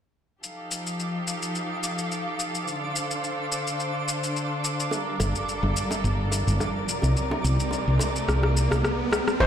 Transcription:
0.43 string section F3 D#4 G4 A4 F5, synth texture D6, shaker
0.71 shaker
0.87 shaker
1.00 shaker
1.27 shaker
1.42 shaker
1.55 shaker
1.83 shaker
1.99 shaker
2.12 shaker
2.40 shaker
2.55 shaker
2.67 string section D3 D4 C5, shaker
2.96 shaker
3.11 shaker
3.24 shaker
3.52 shaker
3.67 shaker
3.80 shaker
4.08 shaker
4.24 shaker
4.36 shaker
4.64 shaker
4.80 shaker
4.91 string section G3 A4 A#4, high bongo, riser, shaker
5.20 fretless electric bass G1, high bongo, shaker
5.35 shaker
5.49 shaker
5.63 fretless electric bass G1, high bongo
5.77 shaker
5.91 high bongo, shaker
6.04 fretless electric bass G1, shaker
6.32 high bongo, shaker
6.47 fretless electric bass G1, shaker
6.60 high bongo, shaker
6.88 string section C3 C4 D#4 D5, shaker
7.02 fretless electric bass C2, high bongo, shaker
7.17 shaker
7.31 high bongo
7.44 fretless electric bass C2, shaker
7.60 shaker
7.71 high bongo, shaker
7.88 fretless electric bass C2
7.99 high bongo, shaker
8.16 shaker
8.28 fretless electric bass C2, cross-stick, shaker
8.43 cross-stick, high bongo
8.57 shaker
8.71 fretless electric bass C2, cross-stick, high bongo, shaker
8.84 cross-stick, shaker
9.12 cross-stick, high bongo, shaker
9.28 cross-stick, shaker
9.40 string section C4 D#4 A4, grand piano C5, kick, crash, shaker

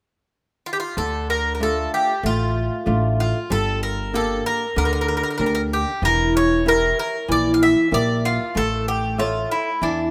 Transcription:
0.66 bouzouki F4
0.73 bouzouki G4
0.80 bouzouki F4
0.97 upright bass D2, nylon-string guitar D3, bouzouki A4
1.30 bouzouki A#4
1.55 bouzouki A#4
1.60 nylon-string guitar A3 D4 F4, bouzouki A4
1.94 bouzouki G4
2.23 upright bass A1, nylon-string guitar A3, bouzouki F4
2.86 upright bass A1, nylon-string guitar A3 D4 F4
3.20 bouzouki F4
3.50 upright bass G1, nylon-string guitar G3, bouzouki A4
3.83 bouzouki A#4
4.13 nylon-string guitar A#3 D4 G4, bouzouki A4
4.46 bouzouki A#4
4.76 upright bass D2, nylon-string guitar D3, bouzouki A#4
4.85 bouzouki A#4
4.93 bouzouki A#4
5.01 bouzouki A#4
5.08 bouzouki A#4
5.17 bouzouki A#4
5.23 bouzouki A#4
5.30 bouzouki A#4
5.38 upright bass D2, nylon-string guitar D4 G4 A#4, bouzouki A#4
5.46 bouzouki A#4
5.55 bouzouki A#4
5.73 bouzouki G4
6.02 upright bass E1, nylon-string guitar E3, bouzouki A#4
6.37 bouzouki C#5
6.66 nylon-string guitar E4 G4 A#4, bouzouki A#4
6.99 bouzouki A#4
7.28 upright bass A#1, nylon-string guitar E3, bouzouki D5
7.54 bouzouki F5
7.63 bouzouki E5
7.91 upright bass A#1, nylon-string guitar G4 A#4 E5, bouzouki D5
8.25 bouzouki F4
8.55 upright bass A1, nylon-string guitar A3, bouzouki A4
8.88 bouzouki G4
9.18 bouzouki F4, nylon-string guitar A4 C#5 E5
9.51 bouzouki E4
9.82 upright bass E2, nylon-string guitar E3, bouzouki D4

